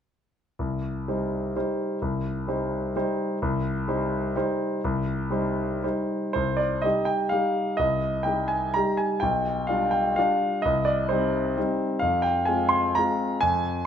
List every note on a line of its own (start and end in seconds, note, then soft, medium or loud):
0.59 1.06 C2 soft
1.08 1.52 G3 soft
1.08 1.52 D#4 soft
1.08 1.52 C5 soft
1.56 1.98 G3 soft
1.56 1.98 D#4 soft
1.56 1.98 C5 soft
2.02 2.46 C2 soft
2.48 2.91 G3 soft
2.48 2.91 D#4 soft
2.48 2.91 C5 soft
2.96 3.37 G3 soft
2.96 3.37 D#4 soft
2.96 3.37 C5 soft
3.42 3.86 C2 medium
3.88 4.31 G3 soft
3.88 4.31 D#4 soft
3.88 4.32 C5 soft
4.35 4.79 G3 soft
4.35 4.80 D#4 soft
4.35 4.80 C5 soft
4.84 5.31 C2 medium
5.30 5.79 G3 soft
5.30 5.79 D#4 soft
5.30 5.79 C5 soft
5.84 6.33 G3 soft
5.84 6.33 D#4 soft
5.84 6.32 C5 soft
6.33 6.83 C2 soft
6.33 6.59 C5 medium
6.57 6.83 D5 medium
6.82 7.28 G3 soft
6.82 7.29 D#4 soft
6.82 7.29 G4 soft
6.82 7.07 D#5 medium
7.05 7.31 G5 medium
7.29 7.75 G3 soft
7.29 7.75 D#4 soft
7.29 7.76 G4 soft
7.29 7.78 F5 medium
7.77 8.25 C2 soft
7.77 8.25 D#5 medium
8.23 8.71 G3 soft
8.23 8.71 D#4 soft
8.23 8.49 G5 medium
8.27 8.71 G4 soft
8.48 8.74 G#5 medium
8.74 9.19 G3 soft
8.74 9.19 D#4 soft
8.74 9.19 G4 soft
8.74 8.98 A#5 medium
8.97 9.22 G#5 medium
9.20 9.67 B1 soft
9.20 9.67 G5 medium
9.67 10.13 G3 soft
9.67 10.13 D4 soft
9.67 10.13 F4 soft
9.67 9.92 F5 medium
9.91 10.16 G5 medium
10.16 10.60 G3 soft
10.16 10.60 D4 soft
10.16 10.60 F4 soft
10.16 10.63 F5 medium
10.62 11.09 C2 soft
10.62 10.85 D#5 medium
10.85 11.09 D5 medium
11.09 11.53 G3 soft
11.09 11.54 C4 soft
11.09 11.54 D#4 soft
11.09 12.02 C5 medium
11.57 11.98 G3 soft
11.57 11.98 C4 soft
11.57 11.99 D#4 soft
11.99 12.46 F2 soft
11.99 12.23 F5 medium
12.22 12.46 G5 medium
12.45 12.92 G#3 soft
12.45 12.92 C4 soft
12.45 12.92 F4 soft
12.45 12.70 G#5 medium
12.69 12.94 C6 medium
12.95 13.39 G#3 soft
12.95 13.38 C4 soft
12.95 13.39 F4 soft
12.95 13.41 A#5 medium
13.41 13.85 F2 soft
13.41 13.86 G#5 medium